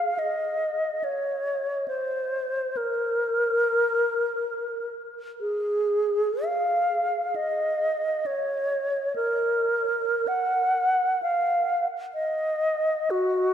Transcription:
Already playing: F5
0.19 D#5
1.04 C#5
1.88 C5
2.77 A#4
5.41 G#4
6.45 F5
7.36 D#5
8.26 C#5
9.16 A#4
10.28 F#5
11.23 F5
12.14 D#5
13.11 F#4

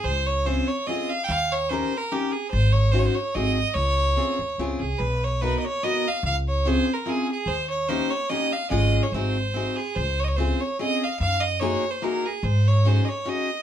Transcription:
0.04 C#2 C5
0.26 C#5
0.45 C4 C#4 F4 G#4 C5
0.68 C#5
0.87 C4 C#4 F4 G#4 D#5
1.09 F5
1.24 F5 G5
1.29 D#2
1.52 C#5
1.69 C#4 D#4 G4 A#4 C5
1.97 A#4
2.12 C#4 D#4 G4 A#4
2.32 G#4
2.51 G#1 C5
2.73 C#5
2.92 C#4 D#4 F#4 G#4 C5
2.99 C#5
3.05 C5
3.15 C#5
3.35 G#1 C4 D#4 F#4 G#4 D#5
3.74 C#2 C#5
4.17 C4 C#4 F4 G#4
4.39 D#2
4.58 C#2 C4 C#4 F4 G#4
4.79 C2 G#4
4.98 B1 B4
5.24 C#5
5.42 B3 D#4 F#4 A#4 B4
5.59 D#5
5.65 C#5
5.83 B3 D#4 F#4 A#4 D#5
6.08 F5
6.23 C#2 F5
6.48 C#5
6.65 C4 C#4 F4 G#4 C5
6.93 A#4
7.06 C4 C#4 F4 G#4
7.31 G#4
7.46 D#2 C5
7.70 C#5
7.89 A#3 C#4 D#4 G4 C5
8.11 C#5
8.30 A#3 C#4 D#4 G4 D#5
8.53 F5
8.70 G#1 G#3 C#4 F4 G#4 D#5
9.03 C#5
9.12 G#1 C4 D#4 F#4 C5
9.16 G#4
9.54 C4 D#4 F#4 G#4
9.76 G#4
9.96 C#2 C5
10.20 C#5
10.24 D#5
10.28 C#5
10.36 C4 C#4 F4 G#4 C5
10.61 C#5
10.79 C4 C#4 F4 G#4 D#5
11.04 F5
11.19 F#2 F5
11.40 D#5
11.60 A#3 D#4 F#4 G#4 C#5
11.90 C5
12.02 A#3 D#4 F#4 G#4 A#4
12.26 G#4
12.43 G#2 C5
12.68 C#5
12.85 C#4 D#4 F#4 G#4 C5
13.05 C#5 D#5
13.25 C#4 D#4 F#4 G#4 D#5

